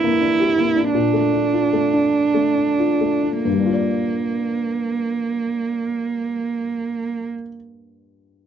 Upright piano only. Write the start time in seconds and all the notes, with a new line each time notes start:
Already playing: G2 A#3 D4 G4
0.04 A#3
0.22 D4
0.40 G4
0.58 A#3
0.76 D4
0.95 A#2
1.13 A3
1.34 D4
1.53 F4
1.73 A3
1.94 D4
2.34 A3
2.55 D4
2.79 F4
3.01 A3
3.23 D4
3.45 G2
3.53 G3
3.60 D4
3.66 F4
3.74 D5